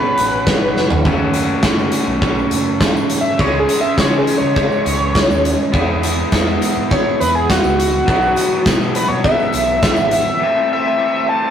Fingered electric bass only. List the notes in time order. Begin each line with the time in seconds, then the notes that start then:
0.18 A1
0.47 G#1
0.76 F#1
1.05 F#1
1.64 F#1
2.07 B1
2.51 F#1
2.95 G#2
3.39 C#2
3.98 C#3
4.41 C#3
4.86 C#2
5.29 D#2
5.74 E2
6.32 E2
6.77 G#2
7.21 E2
7.64 C#2
8.08 B1
8.66 B2
9.09 B2
9.54 B1
9.97 G#1